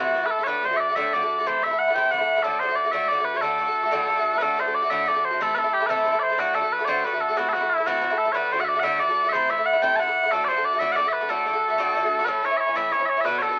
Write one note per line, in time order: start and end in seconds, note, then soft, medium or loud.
0.00 0.13 C3 medium
0.00 0.14 E3 medium
0.00 0.16 A3 medium
0.00 0.16 E4 medium
0.00 0.26 F#4 medium
0.15 0.23 C3 medium
0.15 0.24 E3 medium
0.15 0.24 A3 medium
0.15 0.22 E4 medium
0.23 0.41 E3 soft
0.23 0.40 A3 medium
0.23 0.38 E4 soft
0.23 0.30 B4 medium
0.30 0.44 A4 medium
0.39 0.47 E3 soft
0.39 0.47 A3 soft
0.39 0.47 E4 soft
0.44 0.61 A2 medium
0.44 0.62 D3 medium
0.44 0.65 B4 medium
0.44 0.47 C#5 medium
0.48 0.64 A3 medium
0.48 0.64 F#4 medium
0.62 0.71 A2 medium
0.62 0.72 D3 medium
0.62 0.72 A3 medium
0.62 0.70 F#4 medium
0.62 0.77 C5 medium
0.71 0.90 D3 soft
0.71 0.89 A3 soft
0.71 0.87 F#4 medium
0.77 0.96 D5 medium
0.77 0.80 E5 medium
0.89 0.96 D3 soft
0.89 0.96 A3 soft
0.89 0.97 F#4 soft
0.96 1.12 A2 medium
0.96 1.13 D3 medium
0.96 1.14 A3 medium
0.96 1.14 F#4 medium
0.96 1.14 E5 loud
1.13 1.22 A2 medium
1.13 1.22 D3 medium
1.13 1.22 A3 medium
1.13 1.20 F#4 medium
1.13 1.47 D5 medium
1.21 1.39 D3 soft
1.21 1.39 A3 medium
1.21 1.37 F#4 medium
1.38 1.46 D3 soft
1.38 1.46 A3 soft
1.38 1.47 F#4 medium
1.46 1.61 C3 medium
1.46 1.62 E3 medium
1.46 1.63 A3 medium
1.46 1.64 E4 medium
1.46 1.63 C5 loud
1.62 1.71 C3 medium
1.62 1.71 E3 medium
1.62 1.71 A3 medium
1.62 1.70 E4 medium
1.62 1.79 E5 loud
1.71 1.89 E3 soft
1.71 1.88 A3 medium
1.71 1.87 E4 medium
1.79 1.95 F#5 medium
1.88 1.94 E3 soft
1.88 1.96 A3 soft
1.88 1.96 E4 medium
1.95 2.10 C3 medium
1.95 2.11 E3 medium
1.95 2.12 A3 medium
1.95 2.13 E4 loud
1.95 2.11 G5 loud
2.11 2.20 C3 medium
2.11 2.20 E3 medium
2.11 2.19 A3 medium
2.11 2.17 E4 medium
2.11 2.43 F#5 loud
2.18 2.37 E3 soft
2.18 2.36 A3 soft
2.18 2.35 E4 medium
2.36 2.44 E3 soft
2.36 2.44 A3 soft
2.36 2.44 E4 medium
2.43 2.60 A2 medium
2.43 2.61 D3 medium
2.43 2.61 A3 medium
2.43 2.62 F#4 medium
2.43 2.59 A4 loud
2.59 2.69 A2 medium
2.59 2.70 D3 medium
2.59 2.70 A3 medium
2.59 2.76 C5 loud
2.64 2.67 F#4 medium
2.69 2.85 D3 soft
2.69 2.84 A3 soft
2.69 2.83 F#4 medium
2.76 2.92 D5 medium
2.84 2.92 D3 soft
2.84 2.92 A3 soft
2.84 2.93 F#4 soft
2.92 3.09 A2 medium
2.92 3.10 D3 medium
2.92 3.10 A3 medium
2.92 3.11 F#4 medium
2.92 3.08 E5 loud
3.08 3.19 A2 medium
3.08 3.19 D3 medium
3.08 3.18 A3 medium
3.08 3.25 D5 medium
3.13 3.17 F#4 medium
3.18 3.36 D3 soft
3.18 3.34 A3 medium
3.18 3.33 F#4 medium
3.25 3.37 B4 medium
3.34 3.41 D3 soft
3.34 3.42 A3 medium
3.34 3.43 F#4 soft
3.34 3.41 C#5 loud
3.41 3.57 A2 medium
3.41 3.59 D3 medium
3.41 3.59 A3 medium
3.41 3.60 F#4 medium
3.41 4.38 A4 loud
3.58 3.67 A2 medium
3.58 3.68 D3 medium
3.58 3.67 A3 medium
3.58 3.65 F#4 medium
3.67 3.85 D3 soft
3.67 3.84 A3 soft
3.67 3.82 F#4 soft
3.83 3.91 D3 medium
3.83 3.92 A3 medium
3.83 3.92 F#4 medium
3.91 4.06 A2 medium
3.91 4.08 D3 medium
3.91 4.09 A3 loud
3.91 4.09 F#4 loud
4.08 4.16 A2 medium
4.08 4.17 D3 medium
4.08 4.18 A3 medium
4.08 4.16 F#4 medium
4.17 4.35 D3 soft
4.17 4.34 A3 medium
4.17 4.32 F#4 medium
4.33 4.40 D3 soft
4.33 4.40 A3 medium
4.33 4.42 F#4 medium
4.38 4.55 A2 medium
4.38 4.56 D3 medium
4.38 4.57 A3 medium
4.38 4.42 B4 loud
4.42 4.58 F#4 medium
4.42 4.60 A4 loud
4.56 4.65 A2 medium
4.56 4.66 D3 medium
4.56 4.66 A3 medium
4.56 4.64 F#4 medium
4.56 4.75 C5 medium
4.65 4.83 D3 soft
4.65 4.82 A3 soft
4.65 4.81 F#4 medium
4.75 4.90 D5 medium
4.82 4.90 D3 soft
4.82 4.90 A3 soft
4.82 4.90 F#4 medium
4.90 5.05 A2 medium
4.90 5.07 D3 medium
4.90 5.07 A3 medium
4.90 5.08 F#4 loud
4.90 5.08 E5 loud
5.06 5.15 A2 medium
5.06 5.16 D3 medium
5.06 5.15 A3 medium
5.06 5.13 F#4 medium
5.06 5.25 D5 loud
5.14 5.32 D3 soft
5.14 5.31 A3 soft
5.14 5.30 F#4 soft
5.25 5.42 C5 medium
5.31 5.40 D3 soft
5.31 5.40 A3 soft
5.31 5.39 F#4 medium
5.40 5.53 C3 medium
5.40 5.55 E3 medium
5.40 5.56 A3 medium
5.40 5.57 E4 loud
5.40 5.54 A4 loud
5.54 5.64 C3 medium
5.54 5.64 E3 medium
5.54 5.63 A3 medium
5.54 5.63 E4 medium
5.54 5.59 B4 loud
5.59 5.74 A4 loud
5.64 5.82 E3 soft
5.64 5.81 A3 medium
5.64 5.79 E4 medium
5.74 5.86 G4 medium
5.80 5.89 E3 soft
5.80 5.89 A3 medium
5.80 5.89 E4 medium
5.86 6.04 C3 medium
5.86 6.05 E3 medium
5.86 6.19 A4 medium
5.86 5.90 B4 medium
5.90 6.06 A3 medium
5.90 6.06 E4 medium
6.05 6.13 C3 medium
6.05 6.14 E3 medium
6.05 6.13 A3 medium
6.05 6.11 E4 medium
6.12 6.31 E3 soft
6.12 6.30 A3 medium
6.12 6.28 E4 medium
6.19 6.39 C5 medium
6.19 6.23 D5 medium
6.30 6.38 E3 medium
6.30 6.38 A3 soft
6.30 6.38 E4 medium
6.38 6.53 A2 medium
6.38 6.54 D3 medium
6.38 6.55 A3 medium
6.38 6.55 F#4 loud
6.38 6.55 F#4 medium
6.54 6.63 A2 medium
6.54 6.63 D3 medium
6.54 6.62 A3 medium
6.54 6.60 F#4 medium
6.54 6.72 A4 medium
6.61 6.80 D3 soft
6.61 6.79 A3 soft
6.61 6.78 F#4 medium
6.72 6.85 B4 medium
6.79 6.86 D3 soft
6.79 6.88 A3 medium
6.79 6.87 F#4 soft
6.85 7.03 A2 medium
6.85 7.04 D3 medium
6.85 7.04 A3 medium
6.85 7.04 F#4 medium
6.85 7.00 C5 loud
6.85 6.89 D5 loud
7.00 7.04 C5 medium
7.04 7.12 A2 medium
7.04 7.13 D3 medium
7.04 7.12 A3 medium
7.04 7.12 F#4 medium
7.04 7.21 B4 medium
7.13 7.30 D3 soft
7.13 7.29 A3 medium
7.13 7.27 F#4 soft
7.21 7.38 A4 medium
7.28 7.37 D3 soft
7.28 7.37 A3 soft
7.28 7.36 F#4 medium
7.37 7.53 C3 medium
7.37 7.53 E3 medium
7.37 7.54 A3 medium
7.37 7.54 E4 medium
7.37 7.49 F#4 loud
7.49 7.53 A4 medium
7.53 7.62 C3 medium
7.53 7.62 E3 medium
7.53 7.61 A3 medium
7.53 7.70 F#4 medium
7.57 7.60 E4 medium
7.57 7.76 E4 medium
7.62 7.79 E3 soft
7.62 7.78 A3 soft
7.70 7.87 E4 medium
7.78 7.86 E3 soft
7.78 7.87 A3 soft
7.78 7.86 E4 medium
7.86 8.00 C3 medium
7.86 8.01 E3 medium
7.86 8.02 A3 medium
7.86 8.03 E4 loud
7.86 8.18 F#4 medium
8.01 8.10 C3 medium
8.01 8.10 E3 medium
8.01 8.11 A3 medium
8.01 8.09 E4 medium
8.10 8.27 E3 soft
8.10 8.26 A3 soft
8.10 8.24 E4 medium
8.18 8.32 A4 medium
8.25 8.34 E3 soft
8.25 8.34 A3 soft
8.25 8.34 E4 soft
8.32 8.50 A2 medium
8.32 8.51 D3 medium
8.32 8.51 A3 medium
8.32 8.52 B4 medium
8.32 8.36 C#5 medium
8.36 8.52 F#4 medium
8.51 8.59 A2 medium
8.51 8.60 D3 medium
8.51 8.59 A3 medium
8.51 8.57 F#4 medium
8.51 8.60 C5 loud
8.58 8.76 D3 soft
8.58 8.74 A3 soft
8.58 8.73 F#4 medium
8.58 8.64 F#5 medium
8.64 8.69 E5 medium
8.69 8.80 D5 medium
8.74 8.82 D3 soft
8.74 8.83 A3 medium
8.74 8.83 F#4 medium
8.80 8.98 A2 medium
8.80 8.99 D3 medium
8.80 8.84 F#5 loud
8.84 9.00 A3 medium
8.84 9.01 F#4 medium
8.84 9.00 E5 loud
8.99 9.08 A2 medium
8.99 9.08 D3 medium
8.99 9.09 A3 medium
8.99 9.08 F#4 medium
8.99 9.29 D5 loud
9.09 9.26 D3 soft
9.09 9.25 A3 medium
9.09 9.23 F#4 medium
9.24 9.33 D3 soft
9.24 9.33 A3 medium
9.24 9.32 F#4 medium
9.29 9.50 C5 loud
9.29 9.33 E5 loud
9.33 9.48 C3 medium
9.33 9.49 E3 medium
9.33 9.49 A3 medium
9.33 9.50 E4 medium
9.49 9.57 C3 medium
9.49 9.58 E3 medium
9.49 9.58 A3 medium
9.49 9.56 E4 medium
9.49 9.66 E5 loud
9.58 9.75 E3 soft
9.58 9.73 A3 medium
9.58 9.72 E4 soft
9.66 9.82 F#5 medium
9.73 9.82 E3 soft
9.73 9.82 A3 soft
9.73 9.81 E4 medium
9.82 9.98 C3 medium
9.82 9.99 E3 medium
9.82 9.99 A3 medium
9.82 9.99 E4 medium
9.82 9.96 G5 loud
9.96 10.07 C3 medium
9.96 10.31 F#5 loud
9.96 9.99 A5 loud
10.00 10.07 E3 medium
10.00 10.07 A3 medium
10.00 10.06 E4 medium
10.07 10.24 E3 soft
10.07 10.23 A3 soft
10.07 10.22 E4 medium
10.23 10.32 E3 soft
10.23 10.32 A3 medium
10.23 10.31 E4 medium
10.31 10.47 A2 medium
10.31 10.48 D3 medium
10.31 10.48 A3 medium
10.31 10.49 F#4 medium
10.31 10.44 A4 loud
10.44 10.56 A2 soft
10.44 10.65 C5 loud
10.44 10.48 D5 loud
10.49 10.56 D3 medium
10.49 10.57 A3 medium
10.49 10.55 F#4 medium
10.56 10.74 D3 soft
10.56 10.73 A3 soft
10.56 10.72 F#4 medium
10.65 10.79 D5 medium
10.73 10.79 D3 soft
10.73 10.80 A3 medium
10.73 10.80 F#4 medium
10.79 10.95 A2 medium
10.79 10.95 D3 medium
10.79 10.96 A3 medium
10.79 10.97 F#4 medium
10.79 10.92 E5 loud
10.92 11.04 A2 medium
10.92 10.96 F#5 loud
10.96 11.04 D3 medium
10.96 11.05 A3 medium
10.96 11.03 F#4 medium
10.96 11.08 D5 loud
11.04 11.22 D3 soft
11.04 11.21 A3 soft
11.04 11.20 F#4 soft
11.08 11.13 E5 medium
11.13 11.30 B4 medium
11.21 11.29 D3 soft
11.21 11.28 A3 soft
11.21 11.29 F#4 medium
11.29 11.44 A2 medium
11.29 11.46 D3 medium
11.29 11.46 A3 medium
11.29 11.46 F#4 medium
11.29 12.24 A4 medium
11.46 11.53 A2 soft
11.46 11.54 D3 medium
11.46 11.54 A3 medium
11.46 11.52 F#4 medium
11.53 11.70 D3 soft
11.53 11.69 A3 soft
11.53 11.67 F#4 medium
11.68 11.77 D3 soft
11.68 11.78 A3 medium
11.68 11.77 F#4 medium
11.78 11.93 A2 medium
11.78 11.94 D3 medium
11.78 11.95 A3 loud
11.78 11.95 F#4 medium
11.94 12.02 A2 medium
11.94 12.03 D3 medium
11.94 12.03 A3 medium
11.94 12.02 F#4 medium
12.03 12.20 D3 medium
12.03 12.20 A3 soft
12.03 12.18 F#4 medium
12.19 12.27 D3 soft
12.19 12.28 A3 medium
12.19 12.27 F#4 medium
12.24 12.41 A2 medium
12.24 12.43 E3 medium
12.24 12.43 C#4 medium
12.24 12.44 E4 medium
12.24 12.45 A4 medium
12.24 12.28 B4 medium
12.43 12.51 A2 medium
12.43 12.52 E3 medium
12.43 12.50 C#4 medium
12.43 12.49 E4 medium
12.43 12.57 C#5 loud
12.50 12.68 E3 soft
12.50 12.67 C#4 soft
12.50 12.65 E4 medium
12.57 12.76 C#5 medium
12.57 12.60 E5 medium
12.66 12.75 E3 soft
12.66 12.75 C#4 soft
12.66 12.75 E4 medium
12.75 12.90 A2 medium
12.75 12.91 E3 medium
12.75 12.92 C#4 medium
12.75 12.93 E4 medium
12.75 12.92 E5 loud
12.91 13.00 A2 soft
12.91 13.00 E3 medium
12.91 13.00 C#4 medium
12.91 12.98 E4 medium
12.91 13.06 C#5 medium
12.99 13.18 E3 soft
12.99 13.17 C#4 soft
12.99 13.16 E4 medium
13.06 13.21 C#5 medium
13.06 13.09 E5 medium
13.17 13.25 E3 soft
13.17 13.25 C#4 medium
13.17 13.25 E4 medium
13.21 13.40 B2 medium
13.21 13.25 E5 loud
13.25 13.40 D3 medium
13.25 13.42 B3 medium
13.25 13.42 F#4 medium
13.25 13.39 B4 loud
13.39 13.49 B2 medium
13.39 13.50 D3 medium
13.39 13.50 B3 medium
13.39 13.59 A4 medium
13.39 13.42 C#5 medium
13.44 13.48 F#4 medium
13.49 13.59 D3 soft
13.49 13.59 B3 soft
13.49 13.59 F#4 medium